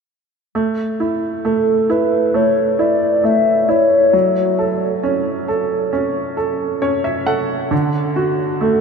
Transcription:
0.55 upright piano A3
1.00 upright piano E4
1.45 upright piano A3, soft synth lead A4
1.90 upright piano E4, soft synth lead B4
2.34 upright piano A3, soft synth lead C#5
2.79 upright piano E4, soft synth lead D5
3.24 upright piano A3, soft synth lead E5
3.69 upright piano E4, soft synth lead C#5
4.13 upright piano F#3
4.59 upright piano A4
5.03 upright piano C#4
5.48 upright piano A4
5.93 upright piano C#4
6.37 upright piano A4
6.82 upright piano C#4 C#5
7.04 upright piano E5
7.26 upright piano A4 F#5
7.71 upright piano D3
8.16 upright piano F#4
8.61 upright piano A3, soft synth lead A4

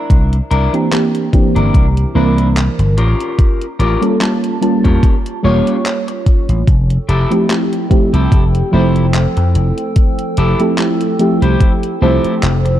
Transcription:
Already playing: clean electric guitar D4 E4 A#4
0.10 slap bass C2, kick, closed hi-hat
0.33 closed hi-hat
0.51 slap bass C2, clean electric guitar D4 E4 A#4, closed hi-hat
0.72 fm electric piano E3 A#3 C4 D4 G4, closed hi-hat
0.91 fm electric piano E3 A#3 C4 D4 G4, muted clean electric guitar stroke, clap, closed hi-hat
1.15 closed hi-hat
1.33 fm electric piano E3 A#3 C4 D4 G4, kick, closed hi-hat
1.55 slap bass G1, clean electric guitar D4 E4 A#4, closed hi-hat
1.74 slap bass C2, kick, closed hi-hat
1.97 closed hi-hat
2.14 slap bass C2, fm electric piano E3 A#3 C4 D4 A#4, clean electric guitar D4 E4 A#4
2.38 closed hi-hat
2.57 clap, closed hi-hat
2.79 slap bass G1, muted clean electric guitar stroke, closed hi-hat
2.97 slap bass A1, clean electric guitar C#4 F4 G4 A#4, closed hi-hat
3.20 closed hi-hat
3.39 kick, closed hi-hat
3.62 closed hi-hat
3.79 slap bass A1, clean electric guitar C#4 F4 G4 A#4, closed hi-hat
4.01 fm electric piano G3 A#3 C#4 F4 A4, closed hi-hat
4.20 fm electric piano G3 A#3 C#4 F4 A5, muted clean electric guitar stroke, clap, closed hi-hat
4.44 closed hi-hat
4.61 fm electric piano G3 A#3 C#4 F4 A5, closed hi-hat
4.84 slap bass E2, clean electric guitar C#4 F4 G4 A#4, kick, closed hi-hat
5.03 kick, closed hi-hat
5.26 closed hi-hat
5.43 slap bass E1, fm electric piano G3 A#3 C#4 F4 C#5, clean electric guitar C#4 F4 G4 C#5
5.67 closed hi-hat
5.86 clap, closed hi-hat
6.08 muted clean electric guitar stroke, closed hi-hat
6.26 muted clean electric guitar stroke, kick, closed hi-hat
6.49 slap bass A1, closed hi-hat
6.68 slap bass F1, ambient pad A4 G5 E6, kick, closed hi-hat
6.90 closed hi-hat
7.09 slap bass F1, clean electric guitar E4 G4 A4, closed hi-hat
7.30 fm electric piano F3 A3 C4 E4 G4, closed hi-hat
7.49 fm electric piano F3 A3 C4 E4 G4, muted clean electric guitar stroke, clap, closed hi-hat
7.73 closed hi-hat
7.89 fm electric piano F3 A3 C4 E4 G4, kick, closed hi-hat
8.13 slap bass C2, clean electric guitar E4 G4 A4, closed hi-hat
8.32 slap bass F1, kick, closed hi-hat
8.55 closed hi-hat
8.71 slap bass F1, fm electric piano F3 A3 C4 E4 C5, clean electric guitar E4 G4 C5
8.96 closed hi-hat
9.14 clap, closed hi-hat
9.37 slap bass F2, muted clean electric guitar stroke, closed hi-hat
9.55 slap bass F1, muted clean electric guitar stroke, closed hi-hat
9.78 closed hi-hat
9.96 kick, closed hi-hat
10.19 closed hi-hat
10.37 slap bass F1, clean electric guitar E4 G4 A4, closed hi-hat
10.59 fm electric piano F3 A3 C4 E4 G4, closed hi-hat
10.78 fm electric piano F3 A3 C4 E4 G4, muted clean electric guitar stroke, clap, closed hi-hat
11.01 closed hi-hat
11.19 fm electric piano F3 A3 C4 E4 G4, closed hi-hat
11.42 slap bass C2, clean electric guitar E4 G4 C5, closed hi-hat
11.60 kick, closed hi-hat
11.83 closed hi-hat
12.01 slap bass C2, fm electric piano F3 A3 C4 E4 C5, clean electric guitar E4 G4 A4
12.24 muted slap bass stroke, closed hi-hat
12.43 slap bass F1, clap, closed hi-hat
12.65 muted clean electric guitar stroke, closed hi-hat

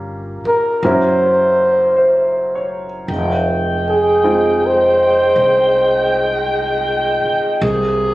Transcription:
Already playing: upright bass G1, grand piano G3 A#3 C#4 F4 A#4
0.44 flugelhorn A#4, muted upright bass stroke
0.83 upright bass F#1, grand piano F#3 A#3 C#4 E4 A#4, flugelhorn C5
1.96 grand piano C5
2.55 grand piano C#5
3.08 upright bass F1, saxophone section D#3 G#3 G5
3.89 flugelhorn G#4
4.23 grand piano G#3 C4 D#4 F4 G5
4.67 flugelhorn C5
5.36 upright bass C2
7.24 muted upright bass stroke
7.61 upright bass C2, saxophone section C3 A#3 G#4

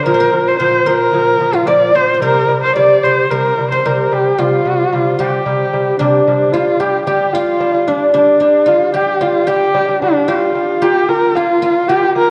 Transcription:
Already playing: guzheng D4 F4 G4 D5
0.05 lute A#2 F3, guzheng A#4, horsehead fiddle A#4
0.14 guzheng C5
0.19 guzheng A#4
0.32 lute A#2 F3
0.48 horsehead fiddle C5
0.59 lute A#2 F3, horsehead fiddle C5, guzheng C5
0.86 lute A#2 F3, horsehead fiddle A#4, guzheng A#4
1.13 lute A#2 F3
1.41 lute A#2 F3
1.53 guzheng F4, horsehead fiddle F4
1.67 lute A#2 F3, guzheng D5, horsehead fiddle D5
1.95 lute A#2 F3, guzheng C5, horsehead fiddle C5
2.14 guzheng C5
2.21 lute C3 G3, guzheng A#4, horsehead fiddle A#4
2.48 lute C3 G3
2.63 horsehead fiddle C5
2.76 lute C3 G3, guzheng D5, horsehead fiddle D5
3.03 lute C3 G3, horsehead fiddle C5, guzheng C5
3.30 lute C3 G3, horsehead fiddle A#4, guzheng A#4
3.57 lute C3 G3
3.71 horsehead fiddle C5, guzheng C5
3.85 lute C3 G3, guzheng A#4, horsehead fiddle A#4
4.11 lute C3 G3, horsehead fiddle G4
4.38 lute C3 G3, guzheng F4, horsehead fiddle F4
4.65 lute C3 G3
4.93 lute C3 G3
5.18 lute C3 G3, guzheng G4, horsehead fiddle G4
5.46 lute C3 G3
5.73 lute C3 G3
5.99 lute C3 G3, guzheng D4, horsehead fiddle D4
6.27 lute C3 G3
6.52 lute G3 D4, horsehead fiddle F4, guzheng F4
6.80 lute G3 D4, guzheng G4, horsehead fiddle G4
7.06 lute G3 D4, horsehead fiddle G4, guzheng G4
7.33 lute G3 D4, horsehead fiddle F4, guzheng F4
7.61 lute G3 D4
7.74 lute G3 D4
7.88 lute G3 D4, horsehead fiddle D4, guzheng D4
8.14 lute G3 D4, guzheng D4, horsehead fiddle D4
8.40 lute G3 D4, guzheng D4
8.66 lute G3 D4, guzheng F4, horsehead fiddle F4
8.94 lute G3 D4, guzheng G4, horsehead fiddle G4
9.21 lute G3 D4, guzheng F4, horsehead fiddle F4
9.47 lute G3 D4, guzheng G4, horsehead fiddle G4
9.75 lute G3 D4
9.89 lute G3 D4
10.02 lute G3 D4, horsehead fiddle D4
10.28 lute G3 D4, guzheng F4, horsehead fiddle F4
10.55 lute G3 D4
10.82 lute A#3 F4, guzheng G4, horsehead fiddle G4
11.09 lute A#3 F4, horsehead fiddle A#4
11.35 lute A#3 F4, horsehead fiddle F4, guzheng F4
11.62 lute A#3 F4, guzheng F4
11.88 lute A#3 F4, horsehead fiddle G4, guzheng G4
12.03 lute A#3 F4
12.15 lute A#3 F4, horsehead fiddle A#4

